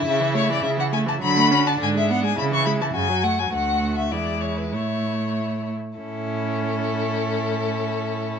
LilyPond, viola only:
\new Staff \with { instrumentName = "Viola" } { \clef bass \time 2/4 \key a \major \tempo 4 = 100 cis16 e16 a16 e16 cis16 e16 a16 e16 | fis16 a16 cis'16 d'16 d16 gis16 b16 gis16 | cis16 e16 gis16 e16 cis16 fis16 a16 fis16 | a4 gis4 |
a4.~ a16 r16 | cis'2~ | cis'2 | }